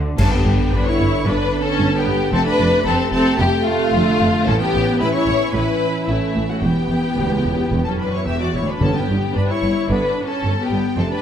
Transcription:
Already playing: double bass section D2, cello section D3
0.17 double bass section G1, cello section G2, trombone section D3 B3, viola section C#4, violin section A4 A5, concert bass drum, crash
0.31 viola section B3, violin section G4 G5
0.45 double bass section G1, cello section G2
0.71 double bass section G1, cello section G2, trombone section D3 B3, viola section D4, violin section B4 B5
0.85 viola section E4, violin section C#5 C#6
0.99 double bass section G1, cello section G2
1.25 double bass section G1, cello section G2, trombone section D3 B3, viola section D4, violin section B4 B5
1.61 viola section C#4, violin section A4 A5
1.79 double bass section G1, cello section G2
1.97 viola section B3, violin section G4 G5
2.06 double bass section G1, cello section G2
2.32 double bass section F1, cello section F2, trombone section C3 A3, viola section C4, violin section A4 A5
2.46 viola section D4, violin section B4 B5
2.59 double bass section F1, cello section F2
2.85 double bass section F1, cello section F2, trombone section C3 A3, viola section C4, violin section A4 A5
3.11 double bass section F1, cello section F2, viola section C4, violin section A4 A5
3.38 double bass section F1, cello section F2, viola section B3, violin section G4 G5
3.66 viola section A3, violin section F4 F5
3.93 double bass section F1, cello section F2, trombone section D3
4.19 double bass section F1, cello section F2
4.46 double bass section A1, cello section A2, trombone section E3 C#4, viola section C#4, violin section A4 A5
4.59 viola section B3, violin section G4 G5
4.74 double bass section A1, cello section A2
4.99 double bass section A1, cello section A2, trombone section E3 C#4, viola section E4, violin section B4 B5
5.14 viola section E4, violin section C#5 C#6
5.27 double bass section A1, cello section A2
5.53 double bass section A1, cello section A2, trombone section E3 C#4, viola section E4, violin section B4 B5
6.06 double bass section A1, cello section A2, trombone section E3 C#4, viola section A3, violin section E4 E5
6.34 double bass section A1, cello section A2
6.48 viola section A3, violin section F#4 F#5
6.60 double bass section E1, cello section E2, trombone section E3 B3, viola section B3, violin section G4 G5
6.89 double bass section E1, cello section E2
7.16 double bass section E1, cello section D2
7.32 cello section C#2
7.45 double bass section E1
7.71 double bass section E1, cello section E2
7.85 cello section F#2, viola section C#4, violin section A4 A5
7.99 viola section D4, violin section B4 B5
8.12 viola section E4, violin section C#5 C#6
8.26 double bass section E1, cello section E2, viola section G4, violin section E5 E6
8.40 viola section F#4, violin section D5 D6
8.54 double bass section E1, viola section E4, violin section C#5 C#6
8.63 cello section D2
8.68 viola section D4, violin section B4 B5
8.80 double bass section G1, cello section G2, timpani G2, trombone section D3 B3, viola section C#4, violin section A4 A5
8.94 viola section B3, violin section G4 G5
9.09 double bass section G1, cello section G2
9.34 double bass section G1, cello section G2, viola section D4, violin section B4 B5
9.49 viola section E4, violin section C#5 C#6
9.63 double bass section G1, cello section G2
9.88 double bass section G1, cello section G2, trombone section D3 B3, viola section D4, violin section B4 B5
10.23 viola section C#4, violin section A4 A5
10.44 double bass section G1, cello section G2
10.60 viola section B3, violin section G4 G5
10.71 double bass section G1, cello section G2
10.96 double bass section F1, cello section F2, trombone section C3 A3, viola section C4, violin section A4
11.00 violin section A5
11.10 viola section D4, violin section B4 B5

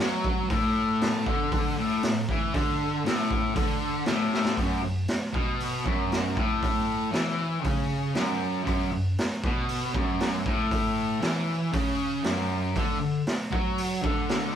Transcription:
0.00 distorted electric guitar F#3
0.24 kick
0.50 distorted electric guitar A2, kick, open hi-hat
1.01 snare, open hi-hat
1.26 distorted electric guitar D3, kick
1.52 kick, open hi-hat
1.78 distorted electric guitar A2
2.03 distorted electric guitar A2, snare, open hi-hat
2.29 distorted electric guitar E3, kick
2.54 distorted electric guitar D3, kick, open hi-hat
3.05 distorted electric guitar A2, snare, open hi-hat
3.31 kick
3.56 distorted electric guitar D3, kick, open hi-hat
4.06 distorted electric guitar A2, snare, open hi-hat
4.34 snare
4.45 snare
4.57 distorted electric guitar F#2, kick, open hi-hat
4.83 distorted electric guitar F#2
5.08 snare, open hi-hat
5.33 distorted electric guitar B2, kick
5.60 open hi-hat
5.84 distorted electric guitar F#2, kick
6.12 snare, open hi-hat
6.35 distorted electric guitar A2, kick
6.63 kick, open hi-hat
7.12 distorted electric guitar E3, snare, open hi-hat
7.63 distorted electric guitar C#3, kick, open hi-hat
8.14 distorted electric guitar F#2, snare, open hi-hat
8.64 distorted electric guitar F#2, kick, open hi-hat
8.92 distorted electric guitar F#2
9.18 snare, open hi-hat
9.44 distorted electric guitar B2, kick
9.69 open hi-hat
9.95 distorted electric guitar F#2, kick
10.20 snare, open hi-hat
10.46 distorted electric guitar A2, kick
10.71 kick, open hi-hat
11.21 distorted electric guitar E3, snare, open hi-hat
11.73 distorted electric guitar C#3, kick, open hi-hat
12.23 distorted electric guitar F#2, snare, open hi-hat
12.75 distorted electric guitar D3, kick, open hi-hat
13.00 distorted electric guitar D3
13.27 snare, open hi-hat
13.51 distorted electric guitar F#3, kick
13.78 open hi-hat
14.02 distorted electric guitar D3, kick
14.29 snare, open hi-hat

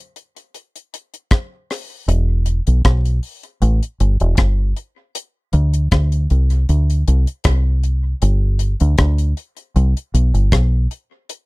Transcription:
0.16 closed hi-hat
0.37 closed hi-hat
0.54 closed hi-hat
0.76 closed hi-hat
0.94 closed hi-hat
1.14 closed hi-hat
1.31 kick, cross-stick, closed hi-hat
1.70 cross-stick, open hi-hat
2.08 fingered electric bass E1, closed hi-hat
2.46 closed hi-hat
2.67 fingered electric bass B1, closed hi-hat
2.85 fingered electric bass B1, kick, cross-stick, closed hi-hat
3.05 closed hi-hat
3.23 open hi-hat
3.43 closed hi-hat
3.62 fingered electric bass A1, closed hi-hat
3.83 closed hi-hat
4.00 fingered electric bass G1, closed hi-hat
4.20 fingered electric bass E1, closed hi-hat
4.37 fingered electric bass G1, kick, cross-stick, closed hi-hat
4.77 closed hi-hat
5.15 closed hi-hat
5.53 fingered electric bass D2, closed hi-hat
5.73 closed hi-hat
5.91 fingered electric bass D2, kick, cross-stick, closed hi-hat
6.12 closed hi-hat
6.30 fingered electric bass C2, closed hi-hat
6.50 closed hi-hat
6.69 fingered electric bass D2, closed hi-hat
6.90 closed hi-hat
7.08 fingered electric bass C2, closed hi-hat
7.27 closed hi-hat
7.44 fingered electric bass C2, kick, cross-stick, closed hi-hat
7.84 closed hi-hat
8.22 fingered electric bass G1, closed hi-hat
8.59 closed hi-hat
8.80 fingered electric bass D2, closed hi-hat
8.98 fingered electric bass D2, kick, cross-stick, closed hi-hat
9.18 closed hi-hat
9.37 closed hi-hat
9.57 closed hi-hat
9.76 fingered electric bass C2, closed hi-hat
9.97 closed hi-hat
10.14 fingered electric bass B1, closed hi-hat
10.34 fingered electric bass G1, closed hi-hat
10.52 fingered electric bass B1, kick, cross-stick, closed hi-hat
10.91 closed hi-hat
11.29 closed hi-hat

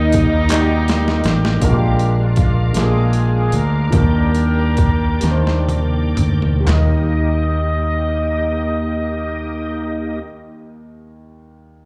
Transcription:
Already playing: fingered electric bass D#2, grand piano D#3 G3 A#3 D#4 A#4 D5, horn section G3 A#3 D#4, alto saxophone D#4, tonewheel organ D#4 A#4 G5 D6
0.12 kick, closed hi-hat
0.49 grand piano G3 A#3 D#4 F#4 D5, snare, clap, closed hi-hat
0.54 horn section A#3 G4 D5
0.59 grand piano G4
0.88 snare, closed hi-hat
1.08 horn section F4, snare
1.24 fingered electric bass A1, horn section G4, snare, closed hi-hat
1.45 snare
1.60 fingered electric bass A#1, grand piano A#2 G#3 A#3 D4 F4 A#4, horn section D4 G4, tonewheel organ A#4 F5 D6, kick, closed hi-hat
1.99 closed hi-hat
2.21 horn section F4
2.36 horn section F4, kick, closed hi-hat
2.73 fingered electric bass A#1, grand piano G#3 A#3 D4 F4 G4, horn section D4 G#4, snare, closed hi-hat
2.77 horn section F4
2.84 grand piano G#4
3.13 closed hi-hat
3.52 fingered electric bass D2, horn section A#4, closed hi-hat
3.90 fingered electric bass D#2, grand piano D#3 F3 A#3 D4 G4 A#4, tonewheel organ D5 G5, kick, closed hi-hat
3.95 grand piano G3, horn section D4 G4 A#4
4.35 closed hi-hat
4.77 kick, closed hi-hat
5.20 fingered electric bass D#2, grand piano D#3 G3 A#3 D4 A#4, snare, closed hi-hat
5.31 grand piano C5
5.47 snare
5.69 closed hi-hat, high tom
6.17 fingered electric bass D2, closed hi-hat, mid tom
6.42 floor tom
6.60 grand piano G3
6.64 grand piano D#2 A#3, clap, floor tom
6.69 fingered electric bass D#2, tonewheel organ A#3 D#4 G4 D#5, grand piano D#4, horn section D#5, snare
6.75 grand piano A#4

